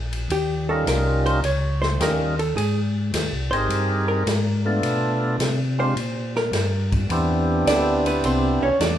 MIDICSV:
0, 0, Header, 1, 5, 480
1, 0, Start_track
1, 0, Tempo, 566038
1, 257, Time_signature, 4, 2, 24, 8
1, 7618, End_track
2, 0, Start_track
2, 0, Title_t, "Hollow-body jazz guitar"
2, 0, Program_c, 0, 26
2, 269, Note_on_c, 0, 67, 73
2, 581, Note_off_c, 0, 67, 0
2, 586, Note_on_c, 0, 69, 86
2, 733, Note_off_c, 0, 69, 0
2, 745, Note_on_c, 0, 70, 79
2, 1060, Note_off_c, 0, 70, 0
2, 1067, Note_on_c, 0, 72, 99
2, 1213, Note_off_c, 0, 72, 0
2, 1229, Note_on_c, 0, 73, 102
2, 1537, Note_off_c, 0, 73, 0
2, 1540, Note_on_c, 0, 72, 94
2, 1690, Note_off_c, 0, 72, 0
2, 1711, Note_on_c, 0, 70, 80
2, 2022, Note_off_c, 0, 70, 0
2, 2029, Note_on_c, 0, 69, 87
2, 2174, Note_off_c, 0, 69, 0
2, 2177, Note_on_c, 0, 68, 87
2, 2374, Note_off_c, 0, 68, 0
2, 2975, Note_on_c, 0, 72, 86
2, 3426, Note_off_c, 0, 72, 0
2, 3462, Note_on_c, 0, 70, 86
2, 3910, Note_off_c, 0, 70, 0
2, 4917, Note_on_c, 0, 72, 104
2, 5359, Note_off_c, 0, 72, 0
2, 5399, Note_on_c, 0, 70, 91
2, 5839, Note_off_c, 0, 70, 0
2, 6509, Note_on_c, 0, 74, 94
2, 6524, Note_on_c, 0, 62, 71
2, 6822, Note_off_c, 0, 74, 0
2, 6830, Note_off_c, 0, 62, 0
2, 6838, Note_on_c, 0, 59, 64
2, 6842, Note_on_c, 0, 71, 77
2, 6980, Note_off_c, 0, 59, 0
2, 6980, Note_off_c, 0, 71, 0
2, 6999, Note_on_c, 0, 60, 77
2, 7002, Note_on_c, 0, 72, 75
2, 7308, Note_off_c, 0, 60, 0
2, 7308, Note_off_c, 0, 72, 0
2, 7313, Note_on_c, 0, 61, 74
2, 7317, Note_on_c, 0, 73, 98
2, 7457, Note_off_c, 0, 73, 0
2, 7458, Note_off_c, 0, 61, 0
2, 7469, Note_on_c, 0, 62, 88
2, 7470, Note_on_c, 0, 74, 90
2, 7618, Note_off_c, 0, 62, 0
2, 7618, Note_off_c, 0, 74, 0
2, 7618, End_track
3, 0, Start_track
3, 0, Title_t, "Tonewheel organ"
3, 0, Program_c, 1, 16
3, 585, Note_on_c, 1, 55, 62
3, 589, Note_on_c, 1, 61, 59
3, 594, Note_on_c, 1, 63, 61
3, 598, Note_on_c, 1, 65, 64
3, 600, Note_on_c, 1, 70, 73
3, 1187, Note_off_c, 1, 55, 0
3, 1188, Note_off_c, 1, 61, 0
3, 1191, Note_off_c, 1, 63, 0
3, 1193, Note_off_c, 1, 65, 0
3, 1194, Note_off_c, 1, 70, 0
3, 1697, Note_on_c, 1, 55, 70
3, 1703, Note_on_c, 1, 63, 59
3, 1706, Note_on_c, 1, 61, 61
3, 1713, Note_on_c, 1, 65, 60
3, 1718, Note_on_c, 1, 70, 74
3, 1993, Note_off_c, 1, 55, 0
3, 1995, Note_off_c, 1, 63, 0
3, 1997, Note_off_c, 1, 61, 0
3, 2001, Note_off_c, 1, 65, 0
3, 2003, Note_off_c, 1, 70, 0
3, 2989, Note_on_c, 1, 60, 57
3, 2989, Note_on_c, 1, 68, 60
3, 2993, Note_on_c, 1, 63, 61
3, 2995, Note_on_c, 1, 67, 61
3, 2999, Note_on_c, 1, 70, 74
3, 3589, Note_off_c, 1, 60, 0
3, 3589, Note_off_c, 1, 68, 0
3, 3591, Note_off_c, 1, 63, 0
3, 3592, Note_off_c, 1, 67, 0
3, 3594, Note_off_c, 1, 70, 0
3, 3943, Note_on_c, 1, 57, 69
3, 3950, Note_on_c, 1, 59, 65
3, 3950, Note_on_c, 1, 62, 67
3, 3951, Note_on_c, 1, 65, 69
3, 3956, Note_on_c, 1, 69, 72
3, 4546, Note_off_c, 1, 57, 0
3, 4549, Note_off_c, 1, 62, 0
3, 4550, Note_off_c, 1, 59, 0
3, 4550, Note_off_c, 1, 65, 0
3, 4552, Note_off_c, 1, 69, 0
3, 4906, Note_on_c, 1, 56, 60
3, 4906, Note_on_c, 1, 60, 58
3, 4913, Note_on_c, 1, 65, 60
3, 4916, Note_on_c, 1, 62, 61
3, 4918, Note_on_c, 1, 67, 64
3, 5043, Note_off_c, 1, 56, 0
3, 5043, Note_off_c, 1, 60, 0
3, 5046, Note_off_c, 1, 65, 0
3, 5048, Note_off_c, 1, 62, 0
3, 5048, Note_off_c, 1, 67, 0
3, 6029, Note_on_c, 1, 59, 69
3, 6031, Note_on_c, 1, 60, 65
3, 6035, Note_on_c, 1, 62, 65
3, 6038, Note_on_c, 1, 67, 84
3, 6040, Note_on_c, 1, 64, 66
3, 7373, Note_off_c, 1, 59, 0
3, 7374, Note_off_c, 1, 60, 0
3, 7376, Note_off_c, 1, 62, 0
3, 7377, Note_off_c, 1, 67, 0
3, 7378, Note_off_c, 1, 64, 0
3, 7618, End_track
4, 0, Start_track
4, 0, Title_t, "Tonewheel organ"
4, 0, Program_c, 2, 16
4, 0, Note_on_c, 2, 34, 96
4, 238, Note_off_c, 2, 34, 0
4, 247, Note_on_c, 2, 39, 98
4, 717, Note_off_c, 2, 39, 0
4, 734, Note_on_c, 2, 36, 94
4, 1201, Note_off_c, 2, 36, 0
4, 1208, Note_on_c, 2, 37, 88
4, 1678, Note_off_c, 2, 37, 0
4, 1687, Note_on_c, 2, 39, 103
4, 2157, Note_off_c, 2, 39, 0
4, 2174, Note_on_c, 2, 44, 88
4, 2641, Note_off_c, 2, 44, 0
4, 2653, Note_on_c, 2, 39, 88
4, 2810, Note_off_c, 2, 39, 0
4, 2811, Note_on_c, 2, 36, 52
4, 2974, Note_off_c, 2, 36, 0
4, 2974, Note_on_c, 2, 32, 67
4, 3124, Note_off_c, 2, 32, 0
4, 3127, Note_on_c, 2, 43, 94
4, 3598, Note_off_c, 2, 43, 0
4, 3614, Note_on_c, 2, 44, 100
4, 4081, Note_off_c, 2, 44, 0
4, 4096, Note_on_c, 2, 47, 80
4, 4562, Note_off_c, 2, 47, 0
4, 4572, Note_on_c, 2, 48, 89
4, 5040, Note_off_c, 2, 48, 0
4, 5051, Note_on_c, 2, 46, 98
4, 5520, Note_off_c, 2, 46, 0
4, 5526, Note_on_c, 2, 43, 105
4, 5997, Note_off_c, 2, 43, 0
4, 6016, Note_on_c, 2, 40, 101
4, 6483, Note_off_c, 2, 40, 0
4, 6494, Note_on_c, 2, 38, 92
4, 6961, Note_off_c, 2, 38, 0
4, 6986, Note_on_c, 2, 36, 87
4, 7288, Note_off_c, 2, 36, 0
4, 7313, Note_on_c, 2, 36, 38
4, 7387, Note_off_c, 2, 36, 0
4, 7457, Note_on_c, 2, 40, 114
4, 7613, Note_off_c, 2, 40, 0
4, 7618, End_track
5, 0, Start_track
5, 0, Title_t, "Drums"
5, 107, Note_on_c, 9, 51, 54
5, 191, Note_off_c, 9, 51, 0
5, 256, Note_on_c, 9, 51, 67
5, 341, Note_off_c, 9, 51, 0
5, 739, Note_on_c, 9, 44, 64
5, 739, Note_on_c, 9, 51, 70
5, 741, Note_on_c, 9, 38, 65
5, 824, Note_off_c, 9, 44, 0
5, 824, Note_off_c, 9, 51, 0
5, 826, Note_off_c, 9, 38, 0
5, 1071, Note_on_c, 9, 51, 49
5, 1155, Note_off_c, 9, 51, 0
5, 1218, Note_on_c, 9, 51, 62
5, 1303, Note_off_c, 9, 51, 0
5, 1549, Note_on_c, 9, 38, 58
5, 1634, Note_off_c, 9, 38, 0
5, 1700, Note_on_c, 9, 44, 56
5, 1700, Note_on_c, 9, 51, 67
5, 1703, Note_on_c, 9, 38, 73
5, 1785, Note_off_c, 9, 44, 0
5, 1785, Note_off_c, 9, 51, 0
5, 1788, Note_off_c, 9, 38, 0
5, 2029, Note_on_c, 9, 51, 49
5, 2114, Note_off_c, 9, 51, 0
5, 2186, Note_on_c, 9, 51, 64
5, 2271, Note_off_c, 9, 51, 0
5, 2660, Note_on_c, 9, 44, 53
5, 2660, Note_on_c, 9, 51, 82
5, 2662, Note_on_c, 9, 38, 67
5, 2744, Note_off_c, 9, 44, 0
5, 2744, Note_off_c, 9, 51, 0
5, 2747, Note_off_c, 9, 38, 0
5, 2992, Note_on_c, 9, 51, 49
5, 3076, Note_off_c, 9, 51, 0
5, 3140, Note_on_c, 9, 51, 64
5, 3225, Note_off_c, 9, 51, 0
5, 3620, Note_on_c, 9, 44, 60
5, 3620, Note_on_c, 9, 51, 76
5, 3623, Note_on_c, 9, 38, 76
5, 3705, Note_off_c, 9, 44, 0
5, 3705, Note_off_c, 9, 51, 0
5, 3707, Note_off_c, 9, 38, 0
5, 4097, Note_on_c, 9, 51, 65
5, 4182, Note_off_c, 9, 51, 0
5, 4579, Note_on_c, 9, 44, 61
5, 4579, Note_on_c, 9, 51, 78
5, 4581, Note_on_c, 9, 38, 77
5, 4663, Note_off_c, 9, 44, 0
5, 4663, Note_off_c, 9, 51, 0
5, 4666, Note_off_c, 9, 38, 0
5, 5061, Note_on_c, 9, 51, 64
5, 5145, Note_off_c, 9, 51, 0
5, 5389, Note_on_c, 9, 38, 46
5, 5474, Note_off_c, 9, 38, 0
5, 5539, Note_on_c, 9, 44, 46
5, 5539, Note_on_c, 9, 51, 75
5, 5541, Note_on_c, 9, 38, 71
5, 5624, Note_off_c, 9, 44, 0
5, 5624, Note_off_c, 9, 51, 0
5, 5626, Note_off_c, 9, 38, 0
5, 5870, Note_on_c, 9, 51, 51
5, 5871, Note_on_c, 9, 36, 75
5, 5955, Note_off_c, 9, 51, 0
5, 5956, Note_off_c, 9, 36, 0
5, 6020, Note_on_c, 9, 51, 64
5, 6105, Note_off_c, 9, 51, 0
5, 6506, Note_on_c, 9, 44, 53
5, 6506, Note_on_c, 9, 51, 86
5, 6509, Note_on_c, 9, 38, 79
5, 6591, Note_off_c, 9, 44, 0
5, 6591, Note_off_c, 9, 51, 0
5, 6594, Note_off_c, 9, 38, 0
5, 6834, Note_on_c, 9, 51, 58
5, 6919, Note_off_c, 9, 51, 0
5, 6984, Note_on_c, 9, 51, 65
5, 7069, Note_off_c, 9, 51, 0
5, 7467, Note_on_c, 9, 44, 59
5, 7467, Note_on_c, 9, 51, 72
5, 7469, Note_on_c, 9, 38, 78
5, 7552, Note_off_c, 9, 44, 0
5, 7552, Note_off_c, 9, 51, 0
5, 7554, Note_off_c, 9, 38, 0
5, 7618, End_track
0, 0, End_of_file